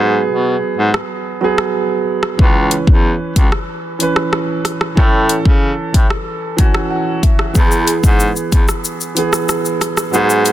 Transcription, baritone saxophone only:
0.00 0.22 G#2 loud
0.29 0.56 B2 medium
0.78 0.91 G#2 medium
2.39 2.80 C#2 loud
2.87 3.15 E2 medium
3.36 3.50 C#2 medium
4.97 5.38 A2 loud
5.45 5.73 C#3 medium
5.94 6.08 A2 medium
7.55 7.96 E2 loud
8.04 8.31 G#2 loud
8.52 8.66 E2 medium
10.13 10.52 G#2 loud

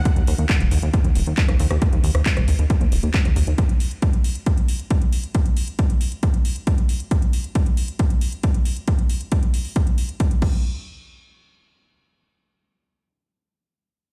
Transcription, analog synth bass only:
0.17 0.24 D#2 medium
0.28 0.35 D#2 loud
0.39 0.46 D#2 medium
0.61 0.68 D#1 medium
0.72 0.79 D#2 loud
0.83 0.90 D#2 medium
1.05 1.12 D#2 medium
1.16 1.23 D#1 loud
1.27 1.34 D#2 medium
1.49 1.56 D#2 medium
1.60 1.67 D#2 loud
1.71 1.78 D#2 medium
1.93 2.00 D#2 medium
2.04 2.11 D#2 loud
2.15 2.22 D#2 medium
2.37 2.44 D#1 medium
2.48 2.55 D#2 loud
2.59 2.66 D#2 medium
2.81 2.88 D#2 medium
2.92 2.99 D#1 loud
3.03 3.10 D#2 medium
3.25 3.32 D#2 medium
3.36 3.43 D#2 loud
3.47 3.54 D#2 medium

